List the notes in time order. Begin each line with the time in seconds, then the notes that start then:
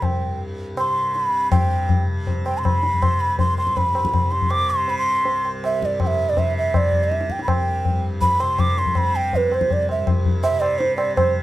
Already playing: C2 G2 C3
0.02 G5, tabla na, tabla ge
0.21 G2
0.75 C3 C6, tabla na
1.14 B5, tabla te
1.29 C3
1.51 G2 G5, tabla na, tabla ge
1.89 tabla tin, tabla ge
2.07 C3
2.27 tabla tin, tabla ge
2.46 G5, tabla na
2.58 C3 C6
2.64 B5, tabla na, tabla ge
2.83 tabla te
2.93 tabla ge
3.02 C6, tabla na, tabla ge
3.13 C2
3.20 B5
3.39 C6, tabla tin, tabla ge
3.58 C6, tabla na
3.66 G2, tabla ke
3.77 B5, tabla tin, tabla ge
3.95 tabla na
4.05 tabla ke
4.14 tabla na, tabla ge
4.20 C3
4.31 C6, tabla te
4.41 tabla ge
4.51 D6, tabla na
4.70 C3 C6
4.88 B5, tabla tin
4.98 C6
5.25 C2, tabla tin
5.45 tabla na
5.64 E5, tabla na
5.80 G2, tabla ke
5.85 D5
6.00 G5, tabla na, tabla ge
6.07 E5
6.29 C3 D5
6.37 E5, tabla tin, tabla ge
6.58 E5
6.74 D5, tabla na, tabla ge
6.85 C3
6.92 tabla ge
7.04 E5
7.12 tabla te
7.21 tabla te
7.30 G5, tabla ke
7.39 C2, tabla te
7.43 B5
7.48 G5, tabla na, tabla ge
7.85 tabla tin, tabla ge
7.89 G2
8.21 B5, tabla tin, tabla ge
8.40 C3 C6, tabla na
8.59 D6, tabla na, tabla ge
8.77 C6, tabla te
8.86 tabla ge
8.93 C3, tabla na, tabla ge
8.98 B5
9.16 G5
9.33 B4, tabla tin, tabla ge
9.46 C2
9.52 C5, tabla na
9.61 tabla ke
9.70 D5, tabla tin, tabla ge
9.89 E5, tabla na
9.99 G2
10.07 tabla na, tabla ge
10.25 tabla ge
10.43 E5, tabla na
10.51 C3
10.60 D5, tabla na
10.78 C5, tabla te
10.96 D5, tabla na
11.03 C3
11.16 C5, tabla na, tabla ge